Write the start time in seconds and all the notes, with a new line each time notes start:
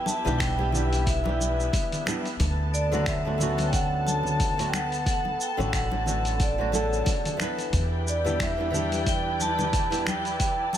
Already playing: B3 E4 G4 B4 E5
0.06 A5, muted conga, cabasa
0.25 B1 E3 G3 B3 D4 G4, low conga, cabasa
0.39 G5, finger snap, kick, open hi-hat, cabasa
0.58 E3 G3 B3 D4 G4, muted conga
0.72 E3 G3 B3 D4 G4, low conga, cabasa
0.93 open hi-hat, cabasa
1.06 E5, kick, open hi-hat, cabasa
1.24 E3 G3 D4, muted conga
1.29 G4
1.40 high conga, cabasa
1.60 cabasa
1.73 kick, open hi-hat, muted conga, cabasa
1.92 open hi-hat, low conga, cabasa
2.06 E3 G3 B3 D4 G4, finger snap, high conga, cabasa
2.25 open hi-hat, cabasa
2.40 D2 A4 A5, kick, open hi-hat, muted conga, cabasa
2.74 D5, cabasa
2.92 D3 F#3 A3 C#4 F#4, muted conga, low conga, cabasa
3.06 E5, finger snap, kick, open hi-hat, cabasa
3.25 D3 F#3 A3 C#4 F#4
3.38 D3 F#3 A3 C#4, low conga, cabasa
3.43 F#4
3.58 open hi-hat, muted conga, cabasa
3.67 G5
3.73 F#5, kick, open hi-hat, cabasa
4.06 A5, muted conga, high conga, cabasa
4.23 low conga, cabasa
4.40 kick, open hi-hat, cabasa
4.57 D3 F#3 A3 C#4 F#4, open hi-hat, cabasa
4.68 G5
4.73 F#5, finger snap, muted conga, high conga, cabasa
4.92 open hi-hat, cabasa
5.06 F#5, kick, open hi-hat, cabasa
5.25 muted conga
5.41 G5, cabasa
5.57 A1 D3 F#3 A3 C#4 F#4, low conga, cabasa
5.73 F#5, finger snap, kick, open hi-hat, cabasa
5.90 D3 F#3 A3 C#4 F#4, muted conga
6.06 D3 F#3 A3 C#4 F#4, low conga, cabasa
6.25 open hi-hat, cabasa
6.40 D5, kick, open hi-hat, muted conga, cabasa
6.58 D3 F#3 A3 C#4 F#4
6.72 C#3 D3 F#3 A3 A4, high conga, cabasa
6.93 cabasa
7.06 kick, open hi-hat, muted conga, cabasa
7.25 open hi-hat, low conga, cabasa
7.37 E3 G3 B3 D4, finger snap, high conga, cabasa
7.42 B4
7.58 open hi-hat, muted conga, cabasa
7.72 E2 E4 G4 B4 D5 G5, kick, open hi-hat, muted conga, cabasa
8.07 D5, cabasa
8.25 E3 G3 B3 D4 G4, low conga, cabasa
8.40 E5, finger snap, kick, open hi-hat, muted conga, cabasa
8.58 E3 G3 B3 D4 G4
8.71 E3 G3 D4, low conga, cabasa
8.76 G4
8.92 open hi-hat, muted conga, cabasa
9.06 G5, kick, open hi-hat, cabasa
9.40 A5, high conga, cabasa
9.59 muted conga, low conga, cabasa
9.73 kick, open hi-hat, cabasa
9.90 E3 G3 B3 D4 G4, open hi-hat, cabasa
10.07 G5, finger snap, muted conga, high conga, cabasa
10.25 open hi-hat, cabasa
10.39 G5 A5, kick, open hi-hat, cabasa
10.73 A5, muted conga, cabasa